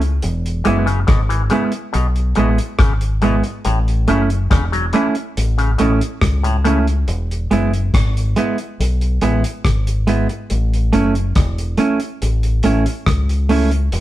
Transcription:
0.00 0.19 C#2 loud
0.00 closed hi-hat soft
0.22 0.63 E1 loud
0.22 closed hi-hat medium
0.46 closed hi-hat medium
0.64 1.06 F#1 medium
0.64 0.78 E3 medium
0.64 0.86 G#3 medium
0.64 0.86 B3 medium
0.64 0.87 E4 loud
0.64 closed hi-hat medium
0.86 0.99 C#3 medium
0.86 closed hi-hat medium
1.07 1.48 G#1 loud
1.07 1.21 B2 medium
1.07 kick loud
1.07 cross-stick loud
1.07 closed hi-hat medium
1.29 1.42 E3 medium
1.29 closed hi-hat medium
1.50 1.64 C#3 medium
1.50 1.71 G#3 loud
1.50 1.72 B3 loud
1.50 1.72 E4 loud
1.50 closed hi-hat medium
1.72 closed hi-hat medium
1.93 2.34 B1 loud
1.93 2.07 B2 medium
1.93 closed hi-hat medium
2.16 closed hi-hat soft
2.35 2.58 A1 medium
2.35 2.50 B2 medium
2.35 2.57 G#3 medium
2.35 2.58 B3 medium
2.35 2.58 E4 loud
2.35 closed hi-hat medium
2.58 closed hi-hat medium
2.79 3.41 G#1 medium
2.79 2.93 C#3 medium
2.79 kick loud
2.79 cross-stick loud
2.79 closed hi-hat medium
3.01 closed hi-hat medium
3.22 3.36 B2 medium
3.22 3.43 G#3 medium
3.22 3.43 B3 medium
3.22 3.44 E4 medium
3.22 closed hi-hat medium
3.44 closed hi-hat soft
3.65 4.05 A1 loud
3.65 3.79 A2 medium
3.65 closed hi-hat medium
3.88 closed hi-hat soft
4.08 4.48 F#1 medium
4.08 4.22 C#3 medium
4.08 4.28 A3 medium
4.08 4.29 C#4 medium
4.08 4.29 E4 loud
4.08 closed hi-hat medium
4.30 closed hi-hat soft
4.50 4.91 E1 loud
4.50 4.64 C#3 medium
4.50 kick loud
4.50 cross-stick loud
4.50 closed hi-hat loud
4.72 4.85 F#3 medium
4.72 closed hi-hat medium
4.93 5.07 E3 medium
4.93 5.14 A3 medium
4.93 5.14 C#4 loud
4.93 5.15 E4 loud
4.93 closed hi-hat medium
5.15 closed hi-hat medium
5.37 5.77 A1 loud
5.37 closed hi-hat loud
5.58 5.71 C#3 medium
5.58 closed hi-hat medium
5.78 6.00 A1 medium
5.78 5.92 B2 medium
5.78 6.00 A3 medium
5.78 6.00 C#4 medium
5.78 6.01 E4 medium
5.78 closed hi-hat medium
6.01 closed hi-hat medium
6.21 7.04 C#2 loud
6.21 kick loud
6.21 cross-stick loud
6.21 closed hi-hat medium
6.43 6.57 A2 medium
6.43 closed hi-hat medium
6.64 6.78 C#3 medium
6.64 6.85 A3 medium
6.64 6.86 C#4 medium
6.64 6.86 E4 medium
6.64 closed hi-hat medium
6.87 closed hi-hat soft
7.08 7.48 E1 loud
7.08 closed hi-hat medium
7.31 closed hi-hat medium
7.51 7.91 F#1 medium
7.51 7.71 G#3 loud
7.51 7.71 B3 medium
7.51 7.72 E4 loud
7.51 closed hi-hat medium
7.74 closed hi-hat medium
7.94 8.34 G#1 loud
7.94 kick loud
7.94 cross-stick loud
7.94 closed hi-hat loud
8.17 closed hi-hat medium
8.36 8.56 G#3 medium
8.36 8.57 B3 loud
8.36 8.58 E4 loud
8.36 closed hi-hat medium
8.58 closed hi-hat medium
8.80 9.19 B1 loud
8.80 closed hi-hat loud
9.01 closed hi-hat medium
9.21 9.43 A1 medium
9.21 9.42 G#3 medium
9.21 9.42 B3 medium
9.21 9.43 E4 medium
9.21 closed hi-hat medium
9.44 closed hi-hat medium
9.65 10.26 G#1 loud
9.65 kick loud
9.65 cross-stick loud
9.65 closed hi-hat medium
9.87 closed hi-hat medium
10.07 10.27 G#3 medium
10.07 10.28 B3 medium
10.07 10.28 E4 medium
10.07 closed hi-hat medium
10.29 closed hi-hat soft
10.50 10.90 A1 loud
10.50 closed hi-hat medium
10.74 closed hi-hat medium
10.93 11.33 F#1 medium
10.93 11.13 A3 loud
10.93 11.13 C#4 loud
10.93 11.14 E4 medium
10.93 closed hi-hat medium
11.15 closed hi-hat soft
11.35 11.76 E1 loud
11.35 kick loud
11.35 cross-stick loud
11.35 closed hi-hat loud
11.58 closed hi-hat medium
11.77 11.98 A3 medium
11.77 11.99 C#4 loud
11.77 11.99 E4 loud
11.77 closed hi-hat medium
12.00 closed hi-hat medium
12.22 12.62 A1 medium
12.22 closed hi-hat medium
12.43 closed hi-hat medium
12.63 12.85 A1 medium
12.63 12.84 A3 medium
12.63 12.84 C#4 loud
12.63 12.85 E4 loud
12.63 closed hi-hat medium
12.86 closed hi-hat medium
13.06 13.88 C#2 loud
13.06 kick loud
13.06 cross-stick loud
13.06 closed hi-hat medium
13.29 closed hi-hat medium
13.49 13.70 A3 medium
13.49 13.70 C#4 medium
13.49 13.70 E4 loud
13.49 open hi-hat medium
13.71 closed hi-hat soft
13.92 14.00 E1 loud
13.92 closed hi-hat medium

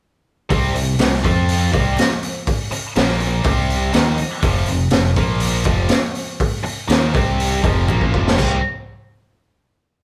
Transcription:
0.49 0.73 C2 loud
0.49 0.73 C3 medium
0.49 0.73 G3 medium
0.49 0.74 C4 loud
0.49 kick loud
0.49 open hi-hat medium
0.74 0.97 C2 medium
0.74 0.94 C3 medium
0.74 0.94 G3 medium
0.74 open hi-hat medium
0.99 1.22 C2 medium
0.99 1.19 C3 medium
0.99 1.19 G3 medium
0.99 snare loud
0.99 clap medium
0.99 open hi-hat medium
1.13 snare soft
1.23 1.69 F2 medium
1.23 1.72 F3 medium
1.23 1.72 C4 medium
1.23 1.72 F4 loud
1.23 kick loud
1.23 open hi-hat medium
1.48 open hi-hat medium
1.72 1.96 C2 loud
1.72 1.96 C3 medium
1.72 1.96 G3 medium
1.72 1.97 C4 medium
1.72 kick loud
1.72 open hi-hat medium
1.97 snare loud
1.97 clap loud
1.97 open hi-hat medium
2.23 open hi-hat medium
2.47 kick medium
2.47 open hi-hat medium
2.70 muted fingered electric bass stroke soft
2.70 muted distorted electric guitar stroke medium
2.70 open hi-hat medium
2.96 3.42 A#1 loud
2.96 3.44 A#2 medium
2.96 3.44 F3 medium
2.96 3.45 A#3 loud
2.96 snare loud
2.96 clap medium
2.96 open hi-hat medium
3.09 snare soft
3.20 open hi-hat medium
3.44 3.91 C2 medium
3.44 3.93 C3 loud
3.44 3.93 G3 loud
3.44 3.94 C4 loud
3.44 kick loud
3.44 open hi-hat medium
3.70 open hi-hat medium
3.93 4.17 D#2 loud
3.93 4.17 D#3 loud
3.93 4.18 A#3 loud
3.93 4.18 D#4 loud
3.93 snare loud
3.93 clap medium
3.93 open hi-hat medium
4.17 muted distorted electric guitar stroke medium
4.17 muted fingered electric bass stroke soft
4.17 open hi-hat medium
4.42 4.66 F1 medium
4.42 4.66 F2 medium
4.42 4.67 C3 medium
4.42 4.68 F3 loud
4.42 kick loud
4.42 open hi-hat medium
4.66 4.91 F1 medium
4.66 4.87 F2 medium
4.66 4.88 C3 medium
4.66 open hi-hat medium
4.90 5.15 F1 medium
4.90 5.13 F2 medium
4.90 5.13 C3 medium
4.90 snare loud
4.90 clap medium
4.90 open hi-hat medium
5.04 snare soft
5.16 5.62 A#1 loud
5.16 5.65 A#2 loud
5.16 5.64 F3 loud
5.16 5.66 A#3 medium
5.16 kick loud
5.16 open hi-hat medium
5.40 open hi-hat medium
5.64 5.88 F1 loud
5.64 5.90 F2 medium
5.64 5.90 C3 medium
5.64 5.90 F3 medium
5.64 kick loud
5.64 open hi-hat medium
5.89 snare loud
5.89 clap medium
5.89 open hi-hat medium
6.15 open hi-hat medium
6.40 kick loud
6.40 open hi-hat medium
6.64 muted distorted electric guitar stroke medium
6.64 muted fingered electric bass stroke soft
6.64 open hi-hat medium
6.88 7.12 D#2 medium
6.88 7.12 D#3 medium
6.88 7.13 A#3 medium
6.88 7.13 D#4 medium
6.88 snare loud
6.88 clap medium
6.88 open hi-hat medium
7.13 7.60 C2 medium
7.13 7.61 C3 medium
7.13 7.63 G3 medium
7.13 7.63 C4 loud
7.13 kick loud
7.13 clap medium
7.13 open hi-hat medium
7.40 open hi-hat medium
7.63 7.87 F1 loud
7.63 7.87 F2 medium
7.63 7.87 C3 medium
7.63 7.87 F3 medium
7.63 kick loud
7.63 open hi-hat medium
7.88 8.11 A#1 loud
7.88 8.12 A#2 medium
7.88 8.12 F3 loud
7.88 8.12 A#3 loud
7.88 kick medium
7.88 clap loud
8.01 kick medium
8.12 8.37 F1 loud
8.12 8.36 F2 medium
8.12 8.35 C3 medium
8.12 8.36 F3 medium
8.12 kick medium
8.27 snare medium
8.36 8.61 C2 loud
8.36 8.57 C3 loud
8.36 8.57 G3 loud
8.36 8.57 C4 loud
8.36 kick loud
8.36 clap medium
8.36 crash medium

